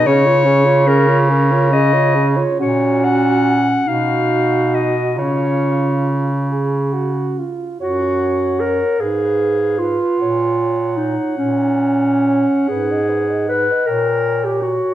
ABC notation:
X:1
M:6/8
L:1/16
Q:3/8=48
K:F#
V:1 name="Clarinet"
c4 A2 A2 d2 z2 | c2 f4 e4 d2 | c6 z6 | f6 =f6 |
f12- | f6 =g4 z2 |]
V:2 name="Alto saxophone"
G c G c G c G c G c G c | F6 F6 | E6 G2 F2 E2 | c c c c c c _c c c c c c |
c c c c c c c c c c c c | B d B d B d _d d d d d d |]
V:3 name="Clarinet"
C E C E C E C E C E C E | C6 D6 | C8- C2 z2 | F4 A2 _A4 =F2- |
=F4 D2 C6 | G4 B2 _B3 =G F2 |]
V:4 name="Bass clarinet" clef=bass
C,12 | A,,6 B,,6 | C,8- C,2 z2 | F,,6 _A,,6 |
A,,6 A,,6 | G,,6 _B,,6 |]